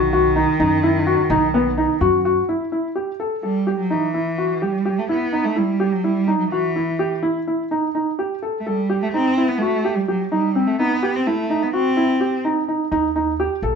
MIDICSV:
0, 0, Header, 1, 4, 480
1, 0, Start_track
1, 0, Key_signature, 1, "minor"
1, 0, Tempo, 473934
1, 2522, Time_signature, 11, 3, 24, 8
1, 13928, End_track
2, 0, Start_track
2, 0, Title_t, "Felt piano"
2, 0, Program_c, 0, 0
2, 132, Note_on_c, 0, 66, 68
2, 283, Note_off_c, 0, 66, 0
2, 364, Note_on_c, 0, 63, 63
2, 517, Note_off_c, 0, 63, 0
2, 604, Note_on_c, 0, 63, 69
2, 757, Note_off_c, 0, 63, 0
2, 844, Note_on_c, 0, 64, 70
2, 997, Note_off_c, 0, 64, 0
2, 1081, Note_on_c, 0, 66, 70
2, 1235, Note_off_c, 0, 66, 0
2, 1319, Note_on_c, 0, 63, 76
2, 1473, Note_off_c, 0, 63, 0
2, 1561, Note_on_c, 0, 59, 70
2, 1714, Note_off_c, 0, 59, 0
2, 1798, Note_on_c, 0, 63, 62
2, 1953, Note_off_c, 0, 63, 0
2, 2036, Note_on_c, 0, 66, 71
2, 2191, Note_off_c, 0, 66, 0
2, 2280, Note_on_c, 0, 66, 67
2, 2434, Note_off_c, 0, 66, 0
2, 2519, Note_on_c, 0, 64, 52
2, 2673, Note_off_c, 0, 64, 0
2, 2755, Note_on_c, 0, 64, 48
2, 2911, Note_off_c, 0, 64, 0
2, 2993, Note_on_c, 0, 67, 47
2, 3149, Note_off_c, 0, 67, 0
2, 3238, Note_on_c, 0, 69, 48
2, 3393, Note_off_c, 0, 69, 0
2, 3475, Note_on_c, 0, 69, 45
2, 3631, Note_off_c, 0, 69, 0
2, 3715, Note_on_c, 0, 67, 48
2, 3871, Note_off_c, 0, 67, 0
2, 3953, Note_on_c, 0, 63, 51
2, 4110, Note_off_c, 0, 63, 0
2, 4194, Note_on_c, 0, 64, 49
2, 4350, Note_off_c, 0, 64, 0
2, 4438, Note_on_c, 0, 66, 52
2, 4593, Note_off_c, 0, 66, 0
2, 4679, Note_on_c, 0, 67, 53
2, 4834, Note_off_c, 0, 67, 0
2, 4917, Note_on_c, 0, 67, 47
2, 5073, Note_off_c, 0, 67, 0
2, 5158, Note_on_c, 0, 64, 60
2, 5313, Note_off_c, 0, 64, 0
2, 5395, Note_on_c, 0, 63, 54
2, 5551, Note_off_c, 0, 63, 0
2, 5631, Note_on_c, 0, 64, 50
2, 5789, Note_off_c, 0, 64, 0
2, 5873, Note_on_c, 0, 67, 55
2, 6031, Note_off_c, 0, 67, 0
2, 6118, Note_on_c, 0, 64, 50
2, 6274, Note_off_c, 0, 64, 0
2, 6357, Note_on_c, 0, 63, 54
2, 6514, Note_off_c, 0, 63, 0
2, 6604, Note_on_c, 0, 66, 56
2, 6759, Note_off_c, 0, 66, 0
2, 6844, Note_on_c, 0, 64, 53
2, 6999, Note_off_c, 0, 64, 0
2, 7082, Note_on_c, 0, 67, 54
2, 7238, Note_off_c, 0, 67, 0
2, 7318, Note_on_c, 0, 64, 64
2, 7475, Note_off_c, 0, 64, 0
2, 7570, Note_on_c, 0, 64, 49
2, 7723, Note_off_c, 0, 64, 0
2, 7810, Note_on_c, 0, 63, 59
2, 7964, Note_off_c, 0, 63, 0
2, 8049, Note_on_c, 0, 63, 53
2, 8203, Note_off_c, 0, 63, 0
2, 8292, Note_on_c, 0, 67, 53
2, 8445, Note_off_c, 0, 67, 0
2, 8533, Note_on_c, 0, 69, 52
2, 8686, Note_off_c, 0, 69, 0
2, 8776, Note_on_c, 0, 69, 54
2, 8928, Note_off_c, 0, 69, 0
2, 9010, Note_on_c, 0, 67, 53
2, 9164, Note_off_c, 0, 67, 0
2, 9257, Note_on_c, 0, 63, 60
2, 9408, Note_off_c, 0, 63, 0
2, 9495, Note_on_c, 0, 64, 54
2, 9647, Note_off_c, 0, 64, 0
2, 9737, Note_on_c, 0, 66, 51
2, 9889, Note_off_c, 0, 66, 0
2, 9973, Note_on_c, 0, 67, 58
2, 10126, Note_off_c, 0, 67, 0
2, 10213, Note_on_c, 0, 67, 49
2, 10366, Note_off_c, 0, 67, 0
2, 10449, Note_on_c, 0, 63, 57
2, 10603, Note_off_c, 0, 63, 0
2, 10688, Note_on_c, 0, 60, 50
2, 10843, Note_off_c, 0, 60, 0
2, 10931, Note_on_c, 0, 63, 53
2, 11085, Note_off_c, 0, 63, 0
2, 11169, Note_on_c, 0, 67, 55
2, 11323, Note_off_c, 0, 67, 0
2, 11412, Note_on_c, 0, 64, 57
2, 11565, Note_off_c, 0, 64, 0
2, 11647, Note_on_c, 0, 63, 51
2, 11802, Note_off_c, 0, 63, 0
2, 11883, Note_on_c, 0, 66, 57
2, 12039, Note_off_c, 0, 66, 0
2, 12120, Note_on_c, 0, 64, 59
2, 12277, Note_off_c, 0, 64, 0
2, 12361, Note_on_c, 0, 67, 47
2, 12518, Note_off_c, 0, 67, 0
2, 12606, Note_on_c, 0, 63, 59
2, 12761, Note_off_c, 0, 63, 0
2, 12845, Note_on_c, 0, 63, 51
2, 13000, Note_off_c, 0, 63, 0
2, 13081, Note_on_c, 0, 63, 64
2, 13237, Note_off_c, 0, 63, 0
2, 13325, Note_on_c, 0, 63, 56
2, 13480, Note_off_c, 0, 63, 0
2, 13568, Note_on_c, 0, 67, 58
2, 13722, Note_off_c, 0, 67, 0
2, 13807, Note_on_c, 0, 69, 54
2, 13928, Note_off_c, 0, 69, 0
2, 13928, End_track
3, 0, Start_track
3, 0, Title_t, "Cello"
3, 0, Program_c, 1, 42
3, 0, Note_on_c, 1, 51, 69
3, 2004, Note_off_c, 1, 51, 0
3, 3470, Note_on_c, 1, 55, 57
3, 3811, Note_off_c, 1, 55, 0
3, 3833, Note_on_c, 1, 54, 56
3, 3959, Note_on_c, 1, 52, 57
3, 3975, Note_off_c, 1, 54, 0
3, 4679, Note_on_c, 1, 55, 62
3, 4694, Note_off_c, 1, 52, 0
3, 5047, Note_on_c, 1, 57, 58
3, 5062, Note_off_c, 1, 55, 0
3, 5163, Note_off_c, 1, 57, 0
3, 5169, Note_on_c, 1, 59, 64
3, 5513, Note_on_c, 1, 57, 68
3, 5528, Note_off_c, 1, 59, 0
3, 5647, Note_on_c, 1, 55, 62
3, 5663, Note_off_c, 1, 57, 0
3, 5993, Note_on_c, 1, 54, 58
3, 6008, Note_off_c, 1, 55, 0
3, 6112, Note_on_c, 1, 55, 67
3, 6127, Note_off_c, 1, 54, 0
3, 6459, Note_off_c, 1, 55, 0
3, 6465, Note_on_c, 1, 54, 52
3, 6580, Note_off_c, 1, 54, 0
3, 6586, Note_on_c, 1, 52, 55
3, 7277, Note_off_c, 1, 52, 0
3, 8708, Note_on_c, 1, 57, 48
3, 8777, Note_on_c, 1, 55, 67
3, 8792, Note_off_c, 1, 57, 0
3, 9134, Note_off_c, 1, 55, 0
3, 9138, Note_on_c, 1, 57, 61
3, 9191, Note_off_c, 1, 57, 0
3, 9235, Note_on_c, 1, 60, 74
3, 9601, Note_on_c, 1, 59, 59
3, 9616, Note_off_c, 1, 60, 0
3, 9706, Note_on_c, 1, 57, 66
3, 9721, Note_off_c, 1, 59, 0
3, 10078, Note_on_c, 1, 55, 56
3, 10093, Note_off_c, 1, 57, 0
3, 10205, Note_off_c, 1, 55, 0
3, 10213, Note_on_c, 1, 54, 55
3, 10436, Note_off_c, 1, 54, 0
3, 10444, Note_on_c, 1, 55, 58
3, 10801, Note_on_c, 1, 57, 66
3, 10816, Note_off_c, 1, 55, 0
3, 10921, Note_off_c, 1, 57, 0
3, 10927, Note_on_c, 1, 59, 70
3, 11298, Note_on_c, 1, 60, 64
3, 11313, Note_off_c, 1, 59, 0
3, 11415, Note_on_c, 1, 57, 64
3, 11430, Note_off_c, 1, 60, 0
3, 11779, Note_on_c, 1, 59, 59
3, 11794, Note_off_c, 1, 57, 0
3, 11886, Note_off_c, 1, 59, 0
3, 11892, Note_on_c, 1, 60, 65
3, 12571, Note_off_c, 1, 60, 0
3, 13928, End_track
4, 0, Start_track
4, 0, Title_t, "Upright bass"
4, 0, Program_c, 2, 32
4, 0, Note_on_c, 2, 35, 80
4, 442, Note_off_c, 2, 35, 0
4, 606, Note_on_c, 2, 42, 72
4, 1161, Note_off_c, 2, 42, 0
4, 1315, Note_on_c, 2, 35, 82
4, 1874, Note_off_c, 2, 35, 0
4, 2034, Note_on_c, 2, 42, 69
4, 2408, Note_off_c, 2, 42, 0
4, 13084, Note_on_c, 2, 39, 73
4, 13642, Note_off_c, 2, 39, 0
4, 13798, Note_on_c, 2, 34, 68
4, 13928, Note_off_c, 2, 34, 0
4, 13928, End_track
0, 0, End_of_file